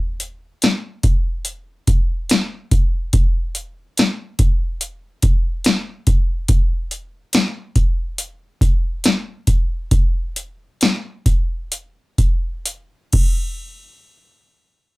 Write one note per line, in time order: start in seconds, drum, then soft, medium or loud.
0.20 closed hi-hat medium
0.62 snare loud
0.62 closed hi-hat medium
1.03 kick medium
1.03 closed hi-hat medium
1.45 closed hi-hat medium
1.87 kick medium
1.87 closed hi-hat medium
2.29 snare loud
2.29 closed hi-hat medium
2.71 kick medium
2.71 closed hi-hat medium
3.13 kick loud
3.13 closed hi-hat loud
3.55 closed hi-hat medium
3.98 snare loud
3.98 closed hi-hat loud
4.39 kick medium
4.39 closed hi-hat medium
4.81 closed hi-hat medium
5.22 kick medium
5.22 closed hi-hat medium
5.64 snare loud
5.64 closed hi-hat medium
6.07 kick medium
6.07 closed hi-hat medium
6.48 kick loud
6.48 closed hi-hat medium
6.91 closed hi-hat medium
7.33 snare loud
7.33 closed hi-hat medium
7.76 kick medium
7.76 closed hi-hat medium
8.18 closed hi-hat medium
8.61 kick medium
8.61 closed hi-hat medium
9.04 snare loud
9.04 closed hi-hat medium
9.47 kick medium
9.47 closed hi-hat medium
9.91 kick loud
9.91 closed hi-hat medium
10.36 closed hi-hat medium
10.81 snare loud
10.81 closed hi-hat medium
11.26 kick medium
11.26 closed hi-hat medium
11.72 closed hi-hat medium
12.18 kick medium
12.18 closed hi-hat medium
12.66 closed hi-hat medium
13.13 kick loud
13.13 crash medium